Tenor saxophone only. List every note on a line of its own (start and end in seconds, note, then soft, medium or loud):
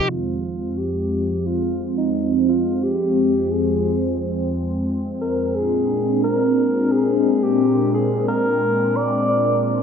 0.00 0.11 G4 medium
0.10 0.79 F4 medium
0.78 1.39 G4 medium
1.39 1.48 G4 medium
1.46 1.82 F4 loud
1.98 2.45 D#4 medium
2.49 2.84 F4 medium
2.83 3.52 G4 loud
3.51 4.19 G#4 loud
5.21 5.57 A#4 medium
5.55 6.23 G#4 loud
6.23 6.93 A#4 medium
6.92 7.44 G#4 loud
7.43 7.93 G4 loud
7.94 8.26 G#4 medium
8.28 8.98 A#4 loud
8.96 9.64 D5 loud